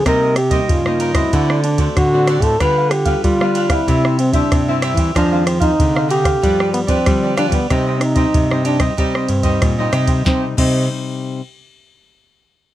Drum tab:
CC |----------------|----------------|----------------|----------------|
RD |x-xxx-xxx-xxx-xx|x-xxx-xxx-xxx-xx|x-xxx-xxx-xxx-xx|x-xxx-xxx-xxx-xx|
SD |r-r--r-r-r--r-r-|r-r--r-r-r--r-r-|r-r--r-r-r--r-r-|r-r--r-r-r--r-r-|
BD |o--oo--oo--oo--o|o--oo--oo--oo--o|o--oo--oo--oo--o|o--oo--oo--oo--o|

CC |--x-------------|
RD |----------------|
SD |o---------------|
BD |o-o-------------|